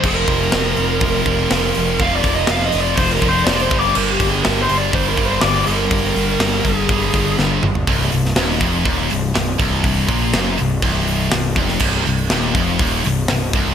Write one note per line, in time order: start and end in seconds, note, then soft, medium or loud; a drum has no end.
0.03 0.24 F1 medium
0.03 1.25 F2 medium
0.03 1.25 C3 medium
0.03 1.26 F3 loud
0.03 2.07 A#4 medium
0.03 kick loud
0.03 crash loud
0.27 0.48 F1 medium
0.27 kick medium
0.27 open hi-hat medium
0.52 0.74 F1 loud
0.52 snare loud
0.52 open hi-hat medium
0.76 0.98 F1 medium
0.76 open hi-hat medium
1.00 1.22 F1 loud
1.00 kick loud
1.00 open hi-hat medium
1.25 1.46 F1 medium
1.25 1.51 C3 medium
1.25 1.50 F3 loud
1.25 kick loud
1.25 open hi-hat medium
1.30 1.51 F2 medium
1.51 1.71 F1 medium
1.51 1.98 F2 medium
1.51 1.99 C3 medium
1.51 snare loud
1.51 open hi-hat medium
1.55 2.01 F3 medium
1.75 1.97 F1 medium
1.75 open hi-hat medium
1.99 2.20 F1 loud
1.99 3.21 F2 loud
1.99 3.21 C3 medium
1.99 3.21 F3 medium
1.99 2.15 F5 loud
1.99 kick loud
1.99 open hi-hat medium
2.16 2.31 D5 medium
2.23 2.45 F1 medium
2.23 kick medium
2.23 open hi-hat medium
2.35 2.50 D#5 loud
2.47 2.69 F1 loud
2.47 2.66 F5 loud
2.47 snare loud
2.47 open hi-hat medium
2.66 2.81 D#5 loud
2.72 2.94 F1 medium
2.72 open hi-hat medium
2.81 2.97 D5 loud
2.95 3.18 F1 loud
2.95 3.12 C5 medium
2.95 kick loud
2.95 open hi-hat loud
3.12 3.29 A#4 medium
3.22 3.42 F1 medium
3.22 3.46 F2 medium
3.22 3.47 C3 medium
3.22 3.46 F3 medium
3.22 kick medium
3.22 open hi-hat medium
3.29 3.47 C5 loud
3.44 3.67 F1 medium
3.44 3.70 F2 medium
3.44 3.62 D5 medium
3.44 snare loud
3.44 open hi-hat loud
3.49 3.71 C3 medium
3.49 3.72 F3 medium
3.62 3.78 C5 loud
3.71 3.91 G1 medium
3.71 4.92 G2 medium
3.71 4.93 D3 loud
3.71 4.95 G3 loud
3.71 kick loud
3.71 open hi-hat medium
3.78 3.96 D5 loud
3.95 4.16 G1 medium
3.95 4.11 A#4 medium
3.95 crash loud
4.12 4.29 G4 medium
4.20 4.40 G1 medium
4.20 kick medium
4.20 open hi-hat medium
4.29 4.45 G#4 medium
4.43 4.66 G1 loud
4.43 4.61 A#4 medium
4.43 snare loud
4.43 open hi-hat medium
4.61 4.78 C5 loud
4.69 4.90 G1 medium
4.69 open hi-hat medium
4.78 4.93 D5 loud
4.92 5.13 G1 loud
4.92 5.16 G2 medium
4.92 5.16 D3 medium
4.92 5.16 G3 medium
4.92 5.09 C5 medium
4.92 kick loud
4.92 open hi-hat medium
5.09 5.25 A#4 medium
5.16 5.38 G1 medium
5.16 5.64 G2 medium
5.16 5.66 D3 medium
5.16 5.69 G3 medium
5.16 kick medium
5.16 open hi-hat medium
5.25 5.41 C5 medium
5.41 5.63 G1 medium
5.41 5.67 D5 medium
5.41 snare loud
5.41 open hi-hat medium
5.66 5.87 G1 medium
5.66 6.87 G2 loud
5.66 6.89 D3 loud
5.66 6.89 G3 medium
5.66 6.78 A#4 medium
5.66 open hi-hat medium
5.91 6.11 G1 medium
5.91 kick loud
5.91 open hi-hat medium
6.16 6.36 G1 medium
6.16 open hi-hat medium
6.39 6.60 G1 loud
6.39 snare loud
6.39 open hi-hat medium
6.65 6.85 G1 medium
6.65 kick medium
6.65 open hi-hat medium
6.78 7.35 G#4 medium
6.89 7.10 G1 loud
6.89 7.12 G2 medium
6.89 7.13 D3 medium
6.89 7.13 G3 medium
6.89 kick loud
6.89 open hi-hat medium
7.14 7.34 G1 medium
7.14 7.63 G2 medium
7.14 7.62 D3 medium
7.14 7.62 G3 medium
7.14 kick medium
7.14 open hi-hat medium
7.39 7.59 G1 medium
7.39 snare medium
7.63 7.83 G1 medium
7.63 mid tom loud
7.75 floor tom medium
7.87 8.10 C1 loud
7.87 8.11 C2 loud
7.87 kick loud
7.87 open hi-hat medium
8.12 8.35 C1 medium
8.12 8.32 C2 medium
8.12 open hi-hat medium
8.25 snare soft
8.36 8.60 D#1 loud
8.36 8.61 D#2 loud
8.36 snare loud
8.36 open hi-hat medium
8.61 8.84 F1 medium
8.61 8.84 F2 loud
8.61 kick loud
8.61 open hi-hat medium
8.85 9.09 D#1 loud
8.85 9.09 D#2 loud
8.85 kick loud
8.85 open hi-hat medium
9.10 9.34 C1 medium
9.10 9.30 C2 medium
9.10 open hi-hat medium
9.34 9.58 C1 medium
9.34 9.55 C2 medium
9.34 snare loud
9.34 open hi-hat medium
9.58 10.05 C1 medium
9.58 10.07 C2 loud
9.58 kick loud
9.58 open hi-hat medium
9.84 kick loud
9.84 open hi-hat medium
10.08 10.32 A#1 medium
10.08 10.32 A#2 loud
10.08 kick loud
10.08 open hi-hat medium
10.33 10.57 F#1 loud
10.33 10.57 F#2 loud
10.33 snare loud
10.33 open hi-hat medium
10.57 10.82 C1 medium
10.57 10.78 C2 medium
10.57 open hi-hat medium
10.82 11.29 C1 loud
10.82 11.32 C2 loud
10.82 kick loud
10.82 open hi-hat loud
11.07 open hi-hat medium
11.31 11.55 C1 medium
11.31 11.53 C2 medium
11.31 snare loud
11.31 open hi-hat medium
11.56 11.80 F1 medium
11.56 11.81 F2 loud
11.56 kick loud
11.56 open hi-hat medium
11.68 snare soft
11.80 12.04 C1 medium
11.80 12.06 C2 loud
11.80 kick loud
11.80 crash loud
12.06 12.29 C1 medium
12.06 12.27 C2 medium
12.06 open hi-hat medium
12.30 12.54 D#1 loud
12.30 12.56 D#2 loud
12.30 snare loud
12.30 open hi-hat medium
12.54 12.78 F1 loud
12.54 12.80 F2 loud
12.54 kick loud
12.54 open hi-hat medium
12.79 13.03 D#1 loud
12.79 13.05 D#2 medium
12.79 kick loud
12.79 open hi-hat medium
13.04 13.28 C1 medium
13.04 13.25 C2 medium
13.04 open hi-hat medium
13.28 13.53 C1 medium
13.28 13.50 C2 medium
13.28 snare loud
13.28 open hi-hat medium
13.53 13.74 C1 medium
13.53 13.74 C2 loud
13.53 kick loud
13.53 open hi-hat medium